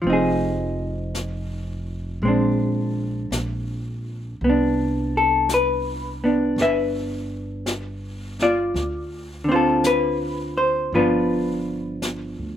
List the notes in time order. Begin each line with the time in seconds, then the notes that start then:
0.02 F1 F3
0.06 C4 D#4, brush sweep
0.13 G#4
1.15 brush sweep, snare, hi-hat pedal
2.22 A#1 G#3 C4, brush sweep
2.28 D4
3.31 A#1, brush sweep, snare, hi-hat pedal
4.40 C2 B3, brush sweep
4.49 D4
5.17 A4
5.49 brush sweep, snare, hi-hat pedal
5.54 B4
6.24 B3 D4
6.56 G1, brush sweep, snare
6.61 B4 E5
7.66 brush sweep, snare, hi-hat pedal
8.39 F4 D5, snare
8.74 D2, brush sweep, snare
9.44 D3
9.49 C4 F4 C5
9.56 A4
9.84 B4, brush sweep, snare, hi-hat pedal
10.57 C5
10.93 G1 F3 B3 D4 F4 B4, brush sweep
12.02 brush sweep, snare, hi-hat pedal
12.38 D2